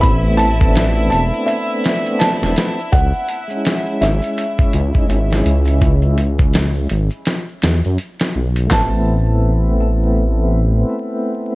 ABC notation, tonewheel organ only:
X:1
M:4/4
L:1/16
Q:"Swing 16ths" 1/4=83
K:Am
V:1 name="Tonewheel organ"
[A,B,CE]3 [A,B,CD]8- [A,B,CD]3 [A,B,CE] z | z3 [^G,^CE]8 [G,C^DE] [G,CE]4- | [^G,^CE]2 z12 z2 | [A,B,CE]16 |]